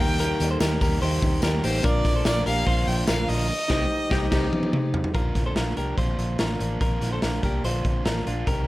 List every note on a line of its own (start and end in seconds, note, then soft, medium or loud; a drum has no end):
0.00 0.33 D#2 medium
0.00 0.19 G3 soft
0.00 0.20 A#3 soft
0.00 0.19 D#4 medium
0.00 1.80 D#4 medium
0.00 0.18 G4 medium
0.00 1.81 G4 medium
0.00 0.17 A#4 medium
0.00 1.81 A#4 medium
0.00 0.41 G5 loud
0.18 0.40 D#3 medium
0.18 0.40 G3 medium
0.18 0.40 A#3 medium
0.18 0.39 D#4 medium
0.18 0.49 G4 medium
0.18 0.49 A#4 loud
0.18 hi-hat pedal medium
0.18 open hi-hat medium
0.18 tambourine medium
0.40 0.57 D#2 medium
0.40 0.61 G3 soft
0.40 0.61 A#3 medium
0.40 0.61 D#4 medium
0.40 hi-hat pedal medium
0.40 open hi-hat medium
0.40 tambourine soft
0.51 0.61 A4 medium
0.51 0.60 C5 medium
0.60 0.78 D#2 loud
0.60 0.81 D#3 medium
0.60 0.82 G3 medium
0.60 0.82 A#3 medium
0.60 0.81 D#4 medium
0.60 0.81 G4 medium
0.60 0.81 A#4 medium
0.60 snare loud
0.60 hi-hat pedal medium
0.60 open hi-hat medium
0.60 tambourine loud
0.81 0.98 D#2 medium
0.81 1.01 G3 medium
0.81 1.02 A#3 medium
0.81 1.02 D#4 medium
0.81 1.02 G4 medium
0.81 1.02 A#4 medium
0.81 kick medium
0.81 hi-hat pedal medium
0.81 open hi-hat medium
0.81 tambourine medium
1.01 1.19 D#2 medium
1.01 1.41 D#3 medium
1.01 1.42 G3 medium
1.01 1.44 A#3 medium
1.01 1.44 D#4 medium
1.01 1.41 G4 medium
1.01 1.41 C5 medium
1.01 hi-hat pedal medium
1.01 open hi-hat medium
1.01 tambourine soft
1.22 1.39 D#2 loud
1.22 kick loud
1.22 hi-hat pedal medium
1.22 open hi-hat medium
1.22 tambourine soft
1.42 1.60 D#2 loud
1.42 1.63 D#3 medium
1.42 1.64 G3 medium
1.42 1.63 A#3 medium
1.42 1.62 D#4 medium
1.42 1.63 G4 medium
1.42 1.64 A#4 medium
1.42 snare loud
1.42 hi-hat pedal medium
1.42 open hi-hat loud
1.42 tambourine medium
1.63 1.81 A1 medium
1.63 1.84 G3 soft
1.63 1.84 A#3 medium
1.63 1.84 D#4 medium
1.63 1.85 D#4 medium
1.63 1.84 G4 medium
1.63 1.85 C5 medium
1.63 hi-hat pedal medium
1.63 open hi-hat medium
1.63 tambourine soft
1.82 2.01 A#1 loud
1.82 2.05 A#2 medium
1.82 2.05 D3 medium
1.82 2.05 F3 medium
1.82 2.05 A#3 medium
1.82 3.45 D4 medium
1.82 2.03 D4 medium
1.82 3.46 F4 medium
1.82 2.14 F4 medium
1.82 2.14 A#4 loud
1.82 3.46 A#4 medium
1.82 2.25 D5 loud
1.82 kick loud
1.82 hi-hat pedal medium
1.82 open hi-hat medium
1.82 tambourine medium
2.04 2.22 A#1 medium
2.04 2.24 F3 soft
2.04 2.25 A#3 medium
2.04 2.25 D4 medium
2.04 kick medium
2.04 snare soft
2.04 hi-hat pedal medium
2.04 open hi-hat medium
2.04 tambourine soft
2.16 2.26 A4 medium
2.16 2.26 C5 medium
2.24 2.43 A#1 loud
2.24 2.45 D3 medium
2.24 2.46 F3 medium
2.24 2.46 A#3 medium
2.24 2.45 D4 medium
2.24 2.47 F4 medium
2.24 2.45 A#4 medium
2.24 2.45 D5 loud
2.24 snare loud
2.24 hi-hat pedal medium
2.24 open hi-hat medium
2.24 tambourine medium
2.46 2.63 A#1 medium
2.46 2.66 F3 soft
2.46 2.66 A#3 medium
2.46 2.67 D4 medium
2.46 2.67 G4 medium
2.46 2.67 A#4 medium
2.46 2.89 F5 loud
2.46 hi-hat pedal medium
2.46 open hi-hat medium
2.46 tambourine medium
2.66 2.84 A#1 loud
2.66 3.08 A#2 medium
2.66 3.05 D3 medium
2.66 3.07 F3 medium
2.66 3.08 A#3 medium
2.66 3.09 D4 medium
2.66 3.06 F4 medium
2.66 3.06 C5 loud
2.66 kick medium
2.66 hi-hat pedal medium
2.66 open hi-hat medium
2.87 3.04 A#1 loud
2.87 3.07 G5 loud
2.87 hi-hat pedal medium
2.87 open hi-hat medium
2.87 tambourine soft
3.07 3.25 A#1 loud
3.07 3.49 D3 medium
3.07 3.49 F3 medium
3.07 3.50 A#3 medium
3.07 3.50 D4 medium
3.07 3.47 F4 medium
3.07 3.47 A#4 medium
3.07 3.30 F5 loud
3.07 snare loud
3.07 hi-hat pedal medium
3.07 open hi-hat medium
3.07 tambourine medium
3.29 3.49 A#1 loud
3.29 4.73 D#5 loud
3.29 hi-hat pedal medium
3.29 open hi-hat medium
3.29 tambourine soft
3.68 3.84 C2 loud
3.68 3.85 G3 loud
3.68 3.84 C4 loud
3.68 3.83 D#4 medium
3.68 3.85 D#4 loud
3.68 3.84 G4 medium
3.68 3.84 C5 loud
3.68 kick loud
3.68 snare loud
3.68 crash medium
4.10 4.25 C2 medium
4.10 4.26 G3 loud
4.10 4.26 C4 loud
4.10 4.25 D#4 loud
4.10 4.25 D#4 medium
4.10 4.26 D#4 loud
4.10 4.25 G4 loud
4.10 4.25 G4 medium
4.10 4.26 C5 medium
4.10 kick loud
4.10 snare medium
4.31 4.46 C2 loud
4.31 4.45 C3 loud
4.31 4.46 G3 medium
4.31 4.46 C4 medium
4.31 4.45 D#4 loud
4.31 4.47 D#4 medium
4.31 4.47 D#4 loud
4.31 4.46 G4 loud
4.31 4.47 C5 loud
4.31 kick loud
4.31 snare loud
4.31 crash medium
4.53 high tom medium
4.63 high tom medium
4.73 mid tom medium
4.94 floor tom loud
5.04 floor tom medium
5.14 5.32 A#1 medium
5.14 5.56 A#2 medium
5.14 5.54 D3 medium
5.14 5.55 F3 medium
5.14 5.56 A#3 medium
5.14 5.56 D4 medium
5.14 5.44 F4 medium
5.14 5.44 A#4 medium
5.14 kick medium
5.14 closed hi-hat medium
5.35 5.53 A#1 medium
5.35 kick medium
5.35 snare soft
5.35 closed hi-hat medium
5.46 5.57 A4 medium
5.46 5.56 C5 medium
5.55 5.73 A#1 medium
5.55 5.76 D3 medium
5.55 5.77 F3 medium
5.55 5.77 A#3 medium
5.55 5.75 D4 medium
5.55 5.77 F4 medium
5.55 5.76 A#4 medium
5.55 snare medium
5.55 closed hi-hat medium
5.76 5.94 C2 medium
5.76 5.97 F3 soft
5.76 5.98 A#3 medium
5.76 5.97 D4 medium
5.76 5.98 G4 soft
5.76 5.98 A#4 medium
5.76 closed hi-hat medium
5.97 6.15 A#1 medium
5.97 6.39 A#2 medium
5.97 6.37 D3 medium
5.97 6.39 F3 medium
5.97 6.40 A#3 medium
5.97 6.40 D4 medium
5.97 6.37 F4 medium
5.97 6.37 C5 medium
5.97 kick medium
5.97 closed hi-hat medium
6.19 6.36 A#1 medium
6.19 closed hi-hat medium
6.39 6.56 A1 medium
6.39 6.60 D3 medium
6.39 6.60 F3 medium
6.39 6.60 A#3 medium
6.39 6.58 D4 medium
6.39 6.79 F4 medium
6.39 6.79 A#4 medium
6.39 snare loud
6.39 closed hi-hat medium
6.59 6.77 A1 medium
6.59 6.80 F3 soft
6.59 6.81 A#3 soft
6.59 6.81 D4 medium
6.59 closed hi-hat medium
6.80 6.98 A#1 medium
6.80 7.22 A#2 medium
6.80 7.21 D3 medium
6.80 7.22 F3 medium
6.80 7.23 A#3 medium
6.80 7.23 D4 medium
6.80 7.11 F4 medium
6.80 7.10 A#4 medium
6.80 kick loud
6.80 closed hi-hat medium
7.01 7.19 A#1 medium
7.01 snare soft
7.01 closed hi-hat medium
7.12 7.23 A4 medium
7.12 7.23 C5 medium
7.22 7.39 A#1 medium
7.22 7.43 D3 medium
7.22 7.43 F3 medium
7.22 7.43 A#3 medium
7.22 7.41 D4 medium
7.22 7.44 F4 soft
7.22 7.43 A#4 medium
7.22 snare medium
7.22 closed hi-hat medium
7.43 7.60 C2 medium
7.43 7.64 F3 soft
7.43 7.65 A#3 medium
7.43 7.64 D4 medium
7.43 7.65 G4 medium
7.43 7.64 A#4 medium
7.43 kick medium
7.43 closed hi-hat medium
7.64 7.81 A#1 medium
7.64 8.06 A#2 medium
7.64 8.04 D3 medium
7.64 8.05 F3 medium
7.64 8.06 A#3 medium
7.64 8.07 D4 medium
7.64 8.04 F4 medium
7.64 8.04 C5 medium
7.64 closed hi-hat medium
7.85 8.02 A#1 medium
7.85 kick medium
7.85 closed hi-hat medium
8.05 8.23 A1 medium
8.05 8.26 D3 medium
8.05 8.27 F3 medium
8.05 8.27 A#3 medium
8.05 8.25 D4 medium
8.05 8.26 F4 medium
8.05 8.27 A#4 medium
8.05 snare loud
8.05 closed hi-hat medium
8.27 8.44 A#1 medium
8.27 8.47 F3 soft
8.27 8.48 A#3 soft
8.27 8.47 D4 soft
8.27 8.48 D4 medium
8.27 8.47 F4 medium
8.27 closed hi-hat medium
8.47 8.64 C2 medium
8.47 8.67 C3 medium
8.47 8.67 G3 medium
8.47 8.67 C4 medium
8.47 8.67 D#4 medium
8.47 8.67 G4 medium
8.47 8.67 A#4 medium
8.47 kick medium
8.47 closed hi-hat medium